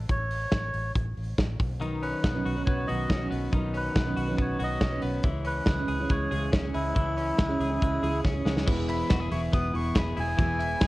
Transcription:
0.09 fingered electric bass A1, melodica C#5, kick, closed hi-hat
0.31 open hi-hat
0.52 fingered electric bass A1, kick, snare, closed hi-hat
0.74 fingered electric bass A1, open hi-hat
0.95 fingered electric bass A1, kick, closed hi-hat
1.17 fingered electric bass A1, open hi-hat
1.38 fingered electric bass A1, kick, snare, closed hi-hat
1.60 fingered electric bass B1, kick, open hi-hat
1.81 clean electric guitar D#3, steel-string acoustic guitar F#3 C#4 D#4 B4, closed hi-hat
2.02 clean electric guitar C#4, melodica B4, open hi-hat
2.24 fingered electric bass B1, clean electric guitar B3, kick, snare, closed hi-hat
2.34 steel-string acoustic guitar B2 D#3 F#3 C#4 D#4 B4
2.45 fingered electric bass B1, clean electric guitar F#4, open hi-hat
2.56 steel-string acoustic guitar B2 D#3 F#3 C#4 D#4 B4
2.65 fingered electric bass B1, clean electric guitar B3, melodica C#5, kick, closed hi-hat
2.87 fingered electric bass B1, steel-string acoustic guitar B2 D#3 F#3 C#4 D#4 B4, clean electric guitar F#4, melodica D#5, open hi-hat
3.09 fingered electric bass B1, clean electric guitar C#4, kick, snare, closed hi-hat
3.20 steel-string acoustic guitar F#3 C#4 D#4 B4
3.30 fingered electric bass B1, clean electric guitar B3, open hi-hat
3.52 fingered electric bass B1, clean electric guitar D#3, steel-string acoustic guitar F#3 C#4 D#4 B4, kick, closed hi-hat
3.74 clean electric guitar C#4, melodica B4, open hi-hat
3.95 fingered electric bass B1, clean electric guitar B3, kick, snare, closed hi-hat
4.05 steel-string acoustic guitar B2 D#3 F#3 C#4 D#4 B4
4.16 fingered electric bass B1, clean electric guitar F#4, open hi-hat
4.28 steel-string acoustic guitar B2 D#3 F#3 C#4 D#4 B4
4.37 fingered electric bass B1, clean electric guitar B3, kick, closed hi-hat
4.41 melodica C#5
4.59 fingered electric bass B1, steel-string acoustic guitar B2 D#3 F#3 C#4 D#4 B4, clean electric guitar F#4, open hi-hat
4.63 melodica D#5
4.81 fingered electric bass B1, clean electric guitar C#4, kick, snare, closed hi-hat
4.92 steel-string acoustic guitar F#3 C#4 D#4 B4
5.02 fingered electric bass B1, clean electric guitar B3, open hi-hat
5.23 fingered electric bass C#2, clean electric guitar E3, steel-string acoustic guitar G#3 C#4 E4 G#4, kick, closed hi-hat
5.45 clean electric guitar C#4, melodica B4, open hi-hat
5.66 fingered electric bass C#2, clean electric guitar G#3, kick, snare, closed hi-hat
5.78 steel-string acoustic guitar C#3 G#3 C#4 E4 G#4
5.88 fingered electric bass C#2, clean electric guitar G#4, open hi-hat
5.99 steel-string acoustic guitar C#3 G#3 C#4 E4 G#4
6.09 fingered electric bass C#2, clean electric guitar G#3, melodica C#5, kick, closed hi-hat
6.31 fingered electric bass C#2, steel-string acoustic guitar C#3 G#3 C#4 E4 G#4, clean electric guitar G#4, open hi-hat
6.52 fingered electric bass C#2, clean electric guitar C#4, kick, snare, closed hi-hat
6.63 steel-string acoustic guitar C#4 E4 G#4
6.74 fingered electric bass C#2, clean electric guitar G#3, melodica E4, open hi-hat
6.94 fingered electric bass C#2, clean electric guitar E3, steel-string acoustic guitar G#3 C#4 E4 G#4, kick, closed hi-hat
7.17 clean electric guitar C#4, open hi-hat
7.38 fingered electric bass C#2, clean electric guitar G#3, kick, snare, closed hi-hat
7.49 steel-string acoustic guitar C#3 G#3 C#4 E4 G#4
7.60 fingered electric bass C#2, clean electric guitar G#4, open hi-hat
7.70 steel-string acoustic guitar C#3 G#3 C#4 E4 G#4
7.82 fingered electric bass C#2, clean electric guitar G#3, kick, closed hi-hat
8.02 fingered electric bass C#2, steel-string acoustic guitar C#3 G#3 C#4 E4 G#4, clean electric guitar G#4, open hi-hat
8.24 fingered electric bass C#2, clean electric guitar C#4, kick, snare
8.34 steel-string acoustic guitar C#4 E4 G#4
8.45 fingered electric bass C#2, clean electric guitar G#3, snare
8.57 snare
8.66 fingered electric bass E1, steel-string acoustic guitar E3 G#3 B3 E4 G#4, clean electric guitar E3, kick, crash
8.88 clean electric guitar E4, melodica B5, clap, open hi-hat
9.10 fingered electric bass E1, clean electric guitar F#4, kick, snare, clap, hi-hat pedal, ride
9.20 clean electric guitar G#4
9.31 fingered electric bass E1, steel-string acoustic guitar G#3 B3 E4 G#4, clean electric guitar E4, melodica C#6, open hi-hat
9.53 fingered electric bass E1, clean electric guitar B3, melodica D#6, kick, hi-hat pedal, ride
9.73 fingered electric bass E1, steel-string acoustic guitar G#3 B3 E4 G#4, clean electric guitar E4, melodica C#6, open hi-hat
9.95 fingered electric bass E1, steel-string acoustic guitar G#3 B3 E4 G#4, clean electric guitar G#4, melodica B5, kick, snare, clap, hi-hat pedal, ride
10.17 fingered electric bass E1, steel-string acoustic guitar G#3 B3 E4 G#4, clean electric guitar E4, melodica G#5, open hi-hat
10.37 fingered electric bass E1, clean electric guitar E3, steel-string acoustic guitar E3 G#3 B3 E4 G#4, kick, hi-hat pedal, ride
10.59 clean electric guitar E4, clap, open hi-hat
10.81 fingered electric bass E1, clean electric guitar G#4, kick, snare, clap, hi-hat pedal, ride

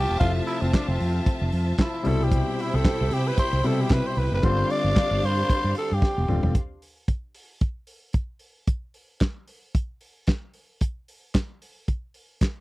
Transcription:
Already playing: clav C3 F3 A3 E4, string section F3 F4 C5 E5 A5, tenor saxophone G4
0.09 fingered electric bass E1
0.20 fingered electric bass F1, clav C3 F3 A3 E4, tenor saxophone F4, kick, closed hi-hat
0.47 tenor saxophone E4, open hi-hat
0.61 fingered electric bass F1, tenor saxophone C4
0.73 tenor saxophone D4, kick, snare, clap, closed hi-hat
0.88 fingered electric bass F1, tenor saxophone C4
1.00 fingered electric bass F2, open hi-hat
1.26 kick, closed hi-hat
1.42 fingered electric bass F1
1.52 fingered electric bass F2, open hi-hat
1.78 tenor saxophone E4, kick, snare, clap, closed hi-hat
2.04 fingered electric bass C2, clav B2 C3 G3 E4, string section E4 G4 C5 E5 G5 B5, tenor saxophone A4, open hi-hat
2.23 tenor saxophone G4
2.32 kick, closed hi-hat
2.59 tenor saxophone E4, open hi-hat
2.74 fingered electric bass C2, tenor saxophone A4
2.85 kick, snare, clap, closed hi-hat
3.01 fingered electric bass C2
3.11 fingered electric bass C3, tenor saxophone G4, open hi-hat
3.28 tenor saxophone B4
3.38 tenor saxophone C5, kick, closed hi-hat
3.53 fingered electric bass C2
3.63 clav B2 C3 G3 E4, fingered electric bass C3, tenor saxophone A4, open hi-hat
3.81 tenor saxophone G4
3.89 fingered electric bass C3, tenor saxophone B4, kick, snare, clap, closed hi-hat
4.07 tenor saxophone C5
4.15 fingered electric bass C2, tenor saxophone B4, open hi-hat
4.32 fingered electric bass F#1, tenor saxophone B4
4.42 fingered electric bass G1, clav D3 G3 B3 F4, string section D4 G4 C5 D5 F5 C6, tenor saxophone C5, kick, closed hi-hat
4.50 clav C4
4.70 tenor saxophone D5, open hi-hat
4.84 fingered electric bass G1
4.96 kick, snare, clap, closed hi-hat
5.11 fingered electric bass G1
5.23 fingered electric bass G2, tenor saxophone C5, open hi-hat
5.50 kick, closed hi-hat
5.64 fingered electric bass G2
5.75 tenor saxophone A4, open hi-hat
5.92 fingered electric bass G2, tenor saxophone G4
6.02 kick, snare
6.18 fingered electric bass E1
6.28 fingered electric bass D#1, clav D3 G3 C4 F4, mid tom
6.43 fingered electric bass E1, floor tom
6.55 kick, closed hi-hat
6.82 open hi-hat
7.08 kick, closed hi-hat
7.35 open hi-hat
7.61 kick, closed hi-hat
7.87 open hi-hat
8.13 kick, closed hi-hat
8.39 open hi-hat
8.67 kick, closed hi-hat
8.94 open hi-hat
9.21 kick, snare, clap, closed hi-hat
9.48 open hi-hat
9.75 kick, closed hi-hat
10.01 open hi-hat
10.27 kick, snare, clap, closed hi-hat
10.54 open hi-hat
10.81 kick, closed hi-hat
11.08 open hi-hat
11.35 kick, snare, clap, closed hi-hat
11.62 open hi-hat
11.88 kick, closed hi-hat
12.14 open hi-hat
12.41 kick, snare, clap, closed hi-hat

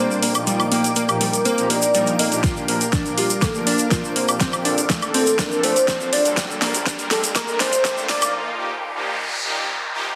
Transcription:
Already playing: supersaw synth A#2 G3 A#3 D4 C5, soft synth lead C5, ambient pad G5, synth texture D6
0.11 shaker
0.22 analog synth bass A#1, synth arpeggio sound A#3, soft synth lead D5, open hi-hat
0.35 supersaw synth A#2 F3 A#3 D#4 F4, closed hi-hat, high woodblock, shaker
0.47 synth arpeggio sound G3, closed hi-hat, shaker
0.60 high woodblock, shaker
0.72 analog synth bass A#1, supersaw synth A#2 F3 A#3 D#4 G4, synth arpeggio sound A#3, open hi-hat
0.84 analog synth bass A#1, closed hi-hat, shaker
0.96 synth arpeggio sound A#3, closed hi-hat, shaker
1.09 supersaw synth A#2 F3 A#3 D#4 G4, closed hi-hat, high woodblock, shaker
1.21 analog synth bass A#1, synth arpeggio sound G3, soft synth lead A#4, open hi-hat
1.33 closed hi-hat, shaker
1.45 synth arpeggio sound A#3, soft synth lead C5, closed hi-hat, shaker
1.58 supersaw synth A#2 F3 A#3 D#4 G4, closed hi-hat, shaker
1.70 analog synth bass A#1, synth arpeggio sound A#3, soft synth lead D5, open hi-hat
1.82 closed hi-hat, shaker
1.94 supersaw synth A#2 F3 A#3 D#4 A#4, synth arpeggio sound G3, closed hi-hat, shaker
2.07 closed hi-hat, shaker
2.19 analog synth bass F2, synth arpeggio sound A#3, soft synth lead D#5, open hi-hat
2.32 supersaw synth A#2 F3 A#3 D4 G4, closed hi-hat, shaker
2.44 synth arpeggio sound F4, kick, snare, closed hi-hat, riser, shaker
2.57 shaker
2.68 analog synth bass A#1, supersaw synth A#2 F3 A#3 D4 A#4, synth arpeggio sound A#3, open hi-hat
2.81 analog synth bass A#1, closed hi-hat, shaker
2.92 synth arpeggio sound D4, kick, snare, closed hi-hat, shaker
3.06 supersaw synth A#2 F3 A#3 D4 A#4, closed hi-hat, shaker
3.17 analog synth bass A#1, synth arpeggio sound F4, soft synth lead G4, open hi-hat
3.30 closed hi-hat, shaker
3.41 synth arpeggio sound A#3, soft synth lead A4, kick, snare, closed hi-hat, high woodblock, shaker
3.55 supersaw synth A#2 F3 A#3 D4 A#4, shaker
3.67 analog synth bass A#2, synth arpeggio sound D4, soft synth lead A#4, open hi-hat
3.78 closed hi-hat, shaker
3.91 supersaw synth A#2 F3 A#3 D4 C5, synth arpeggio sound F4, kick, snare, closed hi-hat, shaker
4.04 shaker
4.16 analog synth bass A#1, synth arpeggio sound A#3, soft synth lead C5, open hi-hat
4.28 supersaw synth A#2 F3 C4 D4 G4, closed hi-hat, high woodblock, shaker
4.40 synth arpeggio sound C4, kick, snare, closed hi-hat, shaker
4.53 high woodblock, shaker
4.65 analog synth bass A#1, supersaw synth A#2 F3 C4 D4 A4, synth arpeggio sound D4, open hi-hat
4.78 analog synth bass A#1, closed hi-hat, shaker
4.90 synth arpeggio sound A3, kick, snare, closed hi-hat, shaker
5.02 supersaw synth A#2 F3 C4 D4 A4, closed hi-hat, high woodblock, shaker
5.14 analog synth bass A#1, synth arpeggio sound C4, soft synth lead A4, open hi-hat
5.27 closed hi-hat, shaker
5.39 synth arpeggio sound D4, soft synth lead A#4, kick, snare, closed hi-hat, shaker
5.52 supersaw synth A#2 F3 C4 D4 A4, shaker
5.63 analog synth bass A#2, synth arpeggio sound A3, soft synth lead C5, open hi-hat
5.76 closed hi-hat, shaker
5.88 supersaw synth A#2 F3 C4 D4 C5, synth arpeggio sound C4, kick, snare, closed hi-hat, shaker
6.00 shaker
6.13 analog synth bass A#1, synth arpeggio sound D4, soft synth lead D5, open hi-hat
6.25 supersaw synth A#2 G3 A#3 D4 A4, closed hi-hat, shaker
6.37 synth arpeggio sound G3, kick, snare, closed hi-hat, shaker
6.51 shaker
6.62 analog synth bass A#1, supersaw synth A#2 G3 A#3 D4 A#4, synth arpeggio sound A#3, snare, open hi-hat
6.74 analog synth bass A#1, closed hi-hat, shaker
6.86 synth arpeggio sound D4, kick, snare, closed hi-hat, shaker
6.99 supersaw synth A#2 G3 A#3 D4 A#4, closed hi-hat, shaker
7.11 analog synth bass A#1, synth arpeggio sound G3, soft synth lead A4, snare, open hi-hat
7.24 closed hi-hat, shaker
7.35 synth arpeggio sound A#3, soft synth lead A#4, kick, snare, closed hi-hat, high woodblock, shaker
7.48 supersaw synth A#2 G3 A#3 D4 A#4, shaker
7.60 analog synth bass A#2, synth arpeggio sound D4, soft synth lead C5, snare, open hi-hat
7.73 closed hi-hat, shaker
7.85 supersaw synth A#2 G3 A#3 D4 C5, synth arpeggio sound G3, kick, snare, closed hi-hat, shaker
7.98 shaker
8.09 analog synth bass A#1, synth arpeggio sound A#3, soft synth lead D5, snare, open hi-hat
8.22 supersaw synth A#2 F3 A#3 D#4 F4, closed hi-hat, high woodblock, shaker
8.34 noise sweep
8.59 supersaw synth A#2 F3 A#3 D#4 G4
8.96 supersaw synth A#2 F3 A#3 D#4 G4
9.45 supersaw synth A#2 F3 A#3 D#4 G4
9.94 supersaw synth A#2 F3 A#3 D#4 G4

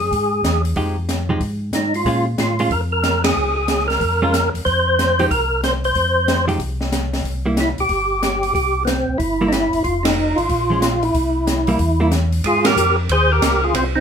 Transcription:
Already playing: tonewheel organ G#4
0.00 tonewheel organ F#2
0.11 tonewheel organ G#2, kick, open hi-hat
0.44 tonewheel organ E2, snare, closed hi-hat
0.65 open hi-hat
0.76 tonewheel organ F2, hollow-body jazz guitar F3 G#3 D#4 G4, kick, open hi-hat
1.09 snare, closed hi-hat
1.29 hollow-body jazz guitar F3 G#3 D#4 G4
1.40 tonewheel organ G#2, kick, open hi-hat
1.73 tonewheel organ G#2 D#4, snare, closed hi-hat
1.94 tonewheel organ F4, open hi-hat
2.05 tonewheel organ A#2, hollow-body jazz guitar G#3 C#4 F4, kick, open hi-hat
2.38 tonewheel organ A2 F4, snare, closed hi-hat
2.59 hollow-body jazz guitar G#3 C#4 F4, open hi-hat
2.71 tonewheel organ F2 A#4, kick, open hi-hat
2.92 tonewheel organ A#4
3.03 snare, closed hi-hat
3.24 tonewheel organ G#4, snare, ride
3.36 tonewheel organ C#2
3.56 tonewheel organ G#4
3.68 snare, closed hi-hat
3.79 snare
3.88 tonewheel organ A#4, snare, open hi-hat
4.00 tonewheel organ F2, kick, open hi-hat
4.22 hollow-body jazz guitar G#3 C#4 F4
4.34 snare, closed hi-hat
4.54 tonewheel organ F2, open hi-hat
4.65 tonewheel organ F2 C5, kick, open hi-hat
4.99 snare, closed hi-hat
5.19 hollow-body jazz guitar F3 G#3 D#4 G4, open hi-hat
5.31 tonewheel organ C2 A#4, kick, open hi-hat
5.63 tonewheel organ C5, snare, closed hi-hat
5.84 tonewheel organ C5, open hi-hat
5.95 tonewheel organ F2, kick, open hi-hat
6.28 snare, closed hi-hat
6.48 hollow-body jazz guitar F3 G#3 D#4 G4, open hi-hat
6.59 tonewheel organ C2, kick, open hi-hat
6.81 snare
6.92 snare, closed hi-hat
7.13 snare, open hi-hat
7.24 tonewheel organ C2, kick, open hi-hat
7.46 hollow-body jazz guitar G3 A#3 E4
7.57 tonewheel organ E4, snare, closed hi-hat
7.78 tonewheel organ C2 G4, open hi-hat
7.89 tonewheel organ G1, kick, open hi-hat
8.23 tonewheel organ G4, snare, closed hi-hat
8.43 open hi-hat
8.55 tonewheel organ C2 G4, kick, open hi-hat
8.85 tonewheel organ B3 C4, snare, closed hi-hat
9.08 tonewheel organ C2
9.18 tonewheel organ G1 E4, kick, open hi-hat
9.41 hollow-body jazz guitar G3 A#3 E4
9.48 tonewheel organ D#4, snare, closed hi-hat
9.52 tonewheel organ E4
9.73 tonewheel organ G1, open hi-hat
9.84 tonewheel organ F1 F4, kick, open hi-hat
10.03 tonewheel organ D#4, snare, ride
10.36 tonewheel organ G#1 F4, open hi-hat
10.49 tonewheel organ A#1, kick, open hi-hat
10.70 hollow-body jazz guitar F3 G#3 C#4
10.82 snare, closed hi-hat
11.03 tonewheel organ E4, open hi-hat
11.14 tonewheel organ C2, kick, open hi-hat
11.47 snare, closed hi-hat
11.67 hollow-body jazz guitar G3 A#3 E4, open hi-hat
11.79 tonewheel organ E2, kick, open hi-hat
12.00 hollow-body jazz guitar G3 A#3 E4
12.11 snare, closed hi-hat
12.32 open hi-hat
12.44 tonewheel organ G#2 F4 G#4, kick, ride
12.65 tonewheel organ G4 A#4, snare, ride
12.76 tonewheel organ F2, hi-hat pedal
13.09 tonewheel organ D#2 C5, kick, ride
13.13 tonewheel organ G#4
13.32 tonewheel organ G4 A#4
13.41 tonewheel organ C#2, kick, snare, hi-hat pedal, ride
13.64 tonewheel organ F4 G#4
13.74 tonewheel organ C2 C4 F4, kick, ride
13.95 tonewheel organ C4 D#4

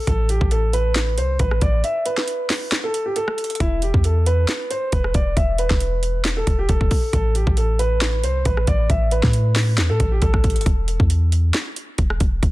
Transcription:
0.07 808-style bass A1, grand piano A4, kick, closed hi-hat
0.29 grand piano G4, closed hi-hat
0.41 808-style bass A1, kick
0.51 grand piano A4, closed hi-hat
0.73 grand piano B4, closed hi-hat
0.96 snare, clap, closed hi-hat
1.18 808-style bass C2, grand piano C5, closed hi-hat
1.39 808-style bass A1, grand piano B4, kick, closed hi-hat
1.51 cross-stick
1.61 808-style bass A1, grand piano D5, kick, closed hi-hat
1.84 grand piano E5, closed hi-hat
2.06 grand piano B4, closed hi-hat
2.18 snare
2.28 closed hi-hat
2.50 snare, clap, open hi-hat
2.72 snare, clap, closed hi-hat
2.84 grand piano A4
2.94 closed hi-hat
3.06 grand piano G4
3.16 grand piano A4, closed hi-hat
3.28 cross-stick
3.38 closed hi-hat, open hi-hat
3.44 closed hi-hat
3.50 closed hi-hat
3.55 closed hi-hat
3.60 808-style bass E1, grand piano E4, kick, closed hi-hat
3.82 grand piano G4, closed hi-hat
3.94 808-style bass E2, kick
4.04 grand piano A4, closed hi-hat
4.26 grand piano B4, closed hi-hat
4.48 snare, clap, closed hi-hat
4.70 grand piano C5, closed hi-hat
4.92 808-style bass E1, grand piano B4, kick, closed hi-hat
5.04 cross-stick
5.14 808-style bass E1, grand piano D5, kick, closed hi-hat
5.37 808-style bass E1, grand piano E5, kick, closed hi-hat
5.58 grand piano B4, closed hi-hat
5.70 808-style bass E1, kick, snare
5.80 closed hi-hat
6.03 closed hi-hat
6.25 snare, clap, closed hi-hat
6.37 grand piano A4
6.47 808-style bass E1, kick, closed hi-hat
6.59 grand piano G4
6.69 808-style bass E1, grand piano A4, kick, closed hi-hat
6.81 kick
6.91 kick, open hi-hat
7.13 808-style bass A1, grand piano A4, kick, closed hi-hat
7.35 grand piano G4, closed hi-hat
7.47 808-style bass A1, kick
7.57 grand piano A4, closed hi-hat
7.79 grand piano B4, closed hi-hat
8.01 snare, clap, closed hi-hat
8.23 808-style bass C2, grand piano C5, closed hi-hat
8.45 808-style bass A1, grand piano B4, kick, closed hi-hat
8.57 cross-stick
8.67 808-style bass A1, grand piano D5, kick, closed hi-hat
8.90 808-style bass A1, grand piano E5, kick, closed hi-hat
9.11 grand piano B4, closed hi-hat
9.23 808-style bass A2, kick, snare
9.33 closed hi-hat
9.56 snare, clap, open hi-hat
9.78 808-style bass E2, snare, clap, closed hi-hat
9.90 808-style bass A2, grand piano A4
10.00 808-style bass A1, kick, closed hi-hat
10.12 grand piano G4
10.22 808-style bass A1, grand piano A4, kick, closed hi-hat
10.34 kick, cross-stick
10.44 kick, closed hi-hat, open hi-hat
10.50 closed hi-hat
10.56 808-style bass G1, closed hi-hat
10.61 closed hi-hat
10.66 808-style bass E1, kick, closed hi-hat
10.88 closed hi-hat
11.00 808-style bass E2, kick
11.10 closed hi-hat
11.32 closed hi-hat
11.54 snare, clap, closed hi-hat
11.76 closed hi-hat
11.98 808-style bass E1, kick, closed hi-hat
12.10 cross-stick
12.20 808-style bass E1, kick, closed hi-hat
12.43 808-style bass E1, kick, closed hi-hat

